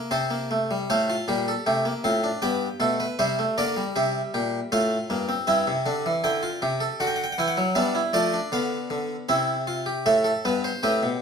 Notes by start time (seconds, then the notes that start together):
Already playing: A#3
0.11 C3 C4 C5 A5
0.30 A#3
0.51 A3
0.71 G3
0.90 A2 A3 C5 F5
1.10 F4
1.28 A#2 G3 G4
1.48 A4
1.66 C3 A3 G4
1.85 A#3
2.04 A2 C4 F4
2.24 D4
2.42 G2 B3 G4 G5
2.80 B2 A3 A4
3.00 B4
3.19 C3 G3 C5 E5
3.39 A3
3.58 D3 A#3 A#4 D5
3.77 G3
3.96 C3 G4 E5
4.34 A#2 G4
4.72 A2 A3 F4 F5
5.10 G2 A#3
5.29 C4
5.47 G2 C4 E4 E5
5.67 C3
5.86 D3 D4
6.06 E3
6.24 D3 E4 G5
6.43 F4
6.62 C3 G4
6.80 A4
7.00 D3 F#4 F#5
7.07 G5
7.16 F#5
7.24 G5
7.32 F#5
7.38 E3 E4 G5
7.48 F#5
7.57 F#3
7.75 G3 B3 D4 E5
7.95 E4
8.13 F3 A3 F4 D5
8.34 D4
8.52 D3 B3 F5
8.90 D3
9.29 C3 C4 E4 E5
9.67 F4
9.86 G4
10.06 A2 A3 A4 E5
10.24 A4
10.45 G2 B3 B4
10.64 C5
10.83 A2 C4 G4 B4
11.03 B2